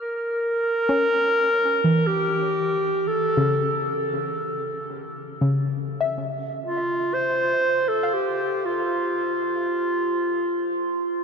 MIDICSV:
0, 0, Header, 1, 3, 480
1, 0, Start_track
1, 0, Tempo, 1016949
1, 13, Time_signature, 3, 2, 24, 8
1, 5305, End_track
2, 0, Start_track
2, 0, Title_t, "Clarinet"
2, 0, Program_c, 0, 71
2, 7, Note_on_c, 0, 70, 110
2, 978, Note_on_c, 0, 67, 92
2, 985, Note_off_c, 0, 70, 0
2, 1454, Note_on_c, 0, 69, 92
2, 1461, Note_off_c, 0, 67, 0
2, 1933, Note_off_c, 0, 69, 0
2, 3135, Note_on_c, 0, 65, 94
2, 3369, Note_on_c, 0, 72, 114
2, 3376, Note_off_c, 0, 65, 0
2, 3721, Note_on_c, 0, 69, 89
2, 3728, Note_off_c, 0, 72, 0
2, 3842, Note_on_c, 0, 67, 86
2, 3849, Note_off_c, 0, 69, 0
2, 4085, Note_on_c, 0, 65, 87
2, 4092, Note_off_c, 0, 67, 0
2, 5305, Note_off_c, 0, 65, 0
2, 5305, End_track
3, 0, Start_track
3, 0, Title_t, "Synth pluck"
3, 0, Program_c, 1, 84
3, 0, Note_on_c, 1, 89, 56
3, 108, Note_off_c, 1, 89, 0
3, 420, Note_on_c, 1, 61, 84
3, 870, Note_on_c, 1, 52, 71
3, 1591, Note_on_c, 1, 49, 74
3, 1688, Note_off_c, 1, 52, 0
3, 2549, Note_off_c, 1, 49, 0
3, 2555, Note_on_c, 1, 49, 75
3, 2575, Note_off_c, 1, 61, 0
3, 2834, Note_on_c, 1, 76, 59
3, 3792, Note_on_c, 1, 77, 60
3, 3888, Note_off_c, 1, 76, 0
3, 4708, Note_off_c, 1, 49, 0
3, 5305, Note_off_c, 1, 77, 0
3, 5305, End_track
0, 0, End_of_file